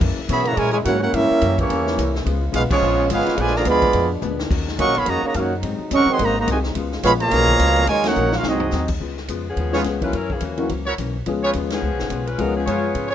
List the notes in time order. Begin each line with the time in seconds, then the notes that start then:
Already playing: C#3
0.00 F#2 E3 F#3 A#3 C#4 E4, kick, crash
0.18 muted upright bass stroke
0.28 F#2 B2 E3 A#3 B3 C#4 G#4 C#5 E5 B5, kick, hi-hat pedal, ride
0.45 C#3 E3 A#3 F#4 C#5 E5 A#5, ride
0.55 F#2 A#2 E3 G#3 A#3 E4 A#4 C#5 G#5, kick, ride
0.60 C#4
0.72 G#3 E4 A#4 C#5 G#5
0.84 F#2 G#2 E3 A#3 C#4 E4 F#4 A#4 C#5 F#5, kick, hi-hat pedal, ride
1.00 A#3 C#4 E4 F#4 A#4 C#5 F#5
1.13 G2 E3 G3 A#3 C#4 E4 G4 A#4 E5, kick, ride
1.31 muted upright bass stroke
1.41 F#2 G2 E3 A#3 C#4, kick, hi-hat pedal, ride
1.58 E3 A#3 C#4 E4 G4 C#5, kick, ride
1.70 E2 G2 E3 A#3 C#4, kick, ride
1.87 snare
1.96 C2 G2 E3 A#3 C#4, kick, hi-hat pedal, ride
2.15 snare
2.24 C#2 C#3 G#3 B3 F4, kick, ride
2.52 B1 C#3 G#3 B3 C#4 F4 G#4 B4 F5, kick, hi-hat pedal, ride
2.70 F3 G#3 B3 C#4 F4 G#4 C#5, muted upright bass stroke, kick, crash
2.81 A#1 C#3 G#3 B3 F4
3.09 G#1 C#3 G#3 B3 C#4 F4 G#4 B4 F5, kick, hi-hat pedal, ride
3.20 snare
3.26 snare, ride
3.37 A#1 A#2 B2 D3 F3 G#3 B3 D4 F4 B4 D5 G#5, kick, ride
3.47 snare
3.55 D3 F3 A#3 G#4 D5 F5 A#5, snare
3.65 D2 A#2 F3 G#3 B3 D4 G#4 F5, kick, hi-hat pedal, ride
3.69 D5 B5
3.82 kick, ride
3.93 F2 A#2 G#3 B3 D4, kick, ride
4.22 D2 A#2 G#3 B3 D4, hi-hat pedal, high tom
4.39 snare
4.49 D#2 C#3 D#3 F#3 A#3 C#4 D#4 F#4, kick, crash
4.68 snare
4.77 C#2 D#3 F#3 A#3 C#4 F#4 A#4 D#5 F#5 C#6, kick, hi-hat pedal, ride
4.86 A#1
4.95 F#1 B3 G#4 C#5 F5 B5, ride
5.06 F2 C#3 D#3 F#3 A#3 C#4 F#4 C#5 D#5 A#5, kick, ride
5.10 F#4
5.23 C#3 F#3 A#3 C#5, muted upright bass stroke
5.27 F#4 D#5 A#5
5.34 F#2 D#3 A#3 C#4 F#4 F5, kick, hi-hat pedal, ride
5.39 D#4 A#4 C#5 F#5
5.61 G#2 C3 F#3 G#3 C4 D#4, kick, ride
5.79 muted upright bass stroke
5.90 D#2 G#2 F#3 C4 C#4 D#4 D#5, kick, hi-hat pedal, ride
5.95 A#4 F#5 C#6
6.06 D#3 F#3 C4, muted upright bass stroke
6.12 G#4 D#5 F#5 C6
6.18 G#1 G#2 F#3 A#3 C4 D#4, kick, ride
6.24 F#4 C5 D#5 A#5
6.38 A#3 F#4 C5 D#5 A#5
6.46 C2 G#2 F#3 C4 D#4 D#5 G#5, kick, hi-hat pedal, ride
6.51 C3 D#3 G#3 F#4 C5
6.64 snare
6.74 C#2 B2 C#3 G#3 B3 F4, kick, ride
6.92 snare
7.03 A#1 C#3 F3 G#3 B3 F4 G#4 C#5 F5 B5, kick, hi-hat pedal, ride
7.20 B2 F3 A#3 G#4 C#5 F5 A#5, ride
7.31 B1 C#3 G#3 B3 F4, kick, snare, ride
7.48 kick
7.59 C#2 C#3 G#3 B3 F4, kick, hi-hat pedal, ride
7.76 ride
7.87 D#2 D#3 F#3 G#3 A#3 C#4 D#4 F4 A#4 C#5 G#5, kick, ride
7.91 F#4
8.04 A#3 C#4 D#4 F#4 A#4 C#5 F#5, snare, ride
8.15 A#1 D#3 A#3 C#4 F#4, hi-hat pedal
8.32 F4, snare
8.36 C#4 F#4 A#4 F5
8.43 C2 G#2 C3 F#3 G#3 C4 D#4, snare
8.49 C4 F#4 G#4 D#5
8.60 floor tom
8.71 D#2 G#2 F#3 C4, snare, hi-hat pedal
8.75 D#4
8.88 kick, crash
9.00 C#2 C#3 G#3 B3 F4, kick
9.17 snare
9.28 F2 C#3 G#3 B3 F4, kick, hi-hat pedal, ride
9.50 F3 B3 C#4 G#4
9.57 D#2 C#3 G#3 B3 F4, kick, ride
9.72 F3 G#3 B3 C#4 F4 G#4 B4 C#5, snare
9.84 C#2 C#3 G#3 B3 F4, kick, snare, hi-hat pedal, ride
10.01 E3 F#3 A#3 C#4 E4 F4 B4, kick, ride
10.05 G#3
10.13 F#2 E3 F#3 A#3 C#4 E4 A#4, kick, ride
10.30 E3 A#3 C#4 G#4, kick
10.40 D#2 F#2 E3 A#3 C#4, kick, hi-hat pedal, ride
10.45 E3 A#3 C#4 F#4
10.57 E3 F#3 A#3 C#4 F#4, ride
10.69 C#2 F#2 E3 A#3 C#4, kick, ride
10.86 E4 F#4 A#4 C#5
10.98 B1 F#2 E3 A#3 C#4, kick, hi-hat pedal, ride
11.26 C#2 C#3 F3 G#3 B3 C#4 F4 G#4, kick, ride
11.43 F4 G#4 B4 C#5
11.53 D#2 C#3 G#3 B3 F4, kick, hi-hat pedal, ride
11.70 snare, ride
11.74 F3 B3 C#4 G#4
11.82 C#2 C#3 G#3 B3 F4
11.92 B1
11.99 G#1, snare
12.10 B1 C#3 G#3 B3 F4, kick, hi-hat pedal, ride
12.27 G#3 C#4 F4 B4, ride
12.38 C#2 C#3 F3 F#3 G#3 B3 C#4 D#4 F4 G#4 A#4, kick, ride
12.57 F3 B3 C#4 G#4
12.65 F#2 C#3 G#3 B3 F4 G#4 B4 C#5, kick, hi-hat pedal, ride
12.72 G#3 B3 C#4 F4
12.95 G#2 C#3 G#3 B3 F4, kick, ride
13.10 F4 G#4 B4 C#5